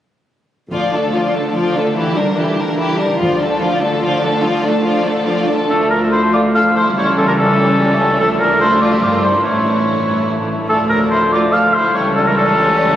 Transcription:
0.71 D2 D3 F3 F4 D5
0.93 A3 D4 A4
1.14 F3 F4 D5
1.34 A3 D4 A4
1.55 F3 F4 D5
1.75 A3 D4 A4
1.95 E3 E4 G4
2.15 G3 D4 A#4
2.36 E3 E4 G4
2.57 G3 D4 A#4
2.77 E3 E4 G4
2.98 G3 D4 A#4
3.18 D2 D3 F3 F4
3.22 D5
3.39 A3 D4 A4
3.60 F3 F4 D5
3.80 A3 D4 A4
4.01 F3 F4 D5
4.21 A3 D4 A4
4.42 F3 F4 D5
4.63 A3 D4 A4
4.83 F3 F4 D5
5.06 A3 D4 A4
5.26 F3 F4 D5
5.48 A3 D4 A4
5.69 D2 D3 F3 A3 D4 A4
5.80 A3
5.90 A3 D4 A#4
6.02 A3
6.12 A3 E4 C5
6.22 A3
6.33 A3 F4 D5
6.44 A3
6.54 A3 A4 F5
6.66 A3
6.75 A3 E4 C5
6.87 A3
6.96 C#2 E3 G3 E4 C#5
7.07 A3
7.17 G3 C#4 A4
7.27 A3 D4 A#4
7.37 G3 C#4 A4
7.49 A3
7.60 G3
7.70 A3
7.80 G3
7.90 A3
8.01 G3
8.12 A3
8.18 D2 D3 F3 A3 D4 A4
8.32 A3
8.39 A3 D4 A#4
8.51 A3
8.61 A3 E4 C5
8.71 A3
8.80 A3 F4 D5
8.90 A3 G4 E5
9.00 G1 G2 F3 G3 F4 D5
9.12 A#3
9.21 G3 E4 C5
9.33 A#3
9.42 A1 A2 E3 A3 E4 C#5
9.55 A3
9.65 A3
9.75 A3
9.86 A3
9.97 A3
10.07 A3
10.17 A3
10.29 A3
10.38 A3
10.50 A3
10.59 A3
10.69 D2 D3 F3 A3 D4 A4
10.81 A3
10.90 A3 D4 A#4
11.03 A3
11.10 A3 E4 C5
11.23 A3
11.32 A3 F4 D5
11.43 A3
11.53 A3 A4 F5
11.64 A3
11.74 A3 E4 C5
11.84 A3
11.94 C#2 E3 G3 A3 E4 C#5
12.07 A3
12.15 G3 C#4 A4
12.27 A3 D4 A#4
12.37 G3 C#4 A4
12.46 A3
12.57 G3
12.68 A3
12.78 G3
12.89 A3

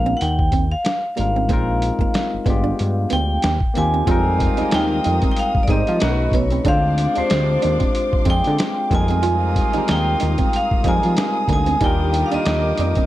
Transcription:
Already playing: A#1 G#3 B3 D4 F4 A#4 F5
0.06 C4
0.17 F#5
0.21 D#2 G5, closed hi-hat
0.39 kick
0.52 C4, kick, closed hi-hat
0.71 F5
0.85 muted hollow-body jazz guitar stroke, snare, closed hi-hat
1.16 G#1 G3 A#3 D4 D#4 F4 F5, closed hi-hat
1.20 A#4
1.36 C4
1.49 A#1 G#3 A#3 C4 D#4 F4, kick, closed hi-hat
1.53 A#4
1.82 muted hollow-body jazz guitar stroke, closed hi-hat
1.99 G1 A#3, kick
2.14 muted hollow-body jazz guitar stroke, snare, closed hi-hat
2.34 G1
2.45 G1 G#3 B3 D4 F4, kick, closed hi-hat
2.50 G4
2.64 D4
2.79 G2, closed hi-hat
3.10 D2 B3 G5, closed hi-hat
3.42 D#2, muted hollow-body jazz guitar stroke, snare, closed hi-hat
3.60 kick
3.74 D#2 A#3 C4 D#4 F4 G#5, closed hi-hat
3.79 G4
3.94 C4
4.05 F2 C3 G#3 A#3 C4 D#4 F4 A#4 F5 A#5 D#6, kick, closed hi-hat
4.10 G3 A#4
4.40 muted hollow-body jazz guitar stroke, kick, closed hi-hat
4.57 D#2 G3 C4 D#4 G4, closed hi-hat
4.62 G#3 A#4
4.71 D#2 G5, muted hollow-body jazz guitar stroke, snare, closed hi-hat
5.04 F2 D#4, closed hi-hat
5.22 C4, kick, closed hi-hat
5.31 G5
5.37 F5, closed hi-hat
5.55 kick
5.63 D5
5.68 G#2 G#3 C4 D#4 G4 D#5, kick, closed hi-hat
5.72 C5
5.87 F3, closed hi-hat
5.99 B1 D#3 A3 C#4 D#4 F#4 A4 D#5 B5 C#6, muted hollow-body jazz guitar stroke, snare, closed hi-hat
6.05 A#4
6.11 B4
6.32 B1 B3 C#5, kick, closed hi-hat
6.50 C4, closed hi-hat
6.64 D2 G#2 F3 G#3 C4 D4 F4 F5 C6 D6, kick, closed hi-hat
6.69 C5
6.98 muted hollow-body jazz guitar stroke, closed hi-hat
7.14 D2 G#3 C4 D4 F4, closed hi-hat
7.18 G4 C5
7.30 D2, muted hollow-body jazz guitar stroke, snare, closed hi-hat
7.62 D#2 D4, closed hi-hat
7.80 C4, kick, closed hi-hat
7.95 closed hi-hat
8.13 kick
8.25 F2 G#3 C4 D4 F4, kick, closed hi-hat
8.30 G#4 G5
8.44 D3, closed hi-hat
8.59 muted hollow-body jazz guitar stroke, snare, closed hi-hat
8.90 F2 C3 G3 G#3 A#3 C4 D#4 F4 F5 A#5 D#6, kick, closed hi-hat
8.94 A#4 G#5
9.08 C4, closed hi-hat
9.23 F4, closed hi-hat
9.56 muted hollow-body jazz guitar stroke, kick, closed hi-hat
9.73 D#2 G3 C4 D#4 G4, closed hi-hat
9.78 G#3 A#4
9.88 D#2 G5, muted hollow-body jazz guitar stroke, snare, closed hi-hat
10.20 D#2 D#4, closed hi-hat
10.38 C4, kick, closed hi-hat
10.53 F5, closed hi-hat
10.71 kick
10.83 F2 G3 G#3 C4 D#4, kick, closed hi-hat
10.88 A#4 G#5
11.03 F3, closed hi-hat
11.17 muted hollow-body jazz guitar stroke, snare, closed hi-hat
11.48 D2 A#3, kick, closed hi-hat
11.53 G#5
11.66 C4, closed hi-hat
11.81 D#2 D3 D#3 G3 D4 D#4 F4 G4 A#4 G5 D6, kick, closed hi-hat
11.85 A#4
12.13 muted hollow-body jazz guitar stroke, closed hi-hat
12.26 F5
12.31 D#2 D#3 G3 A#3 D4 F4 D#5, closed hi-hat
12.36 A#4
12.46 D#2, muted hollow-body jazz guitar stroke, snare, closed hi-hat
12.78 F2 D4, closed hi-hat
12.95 C4, kick, closed hi-hat

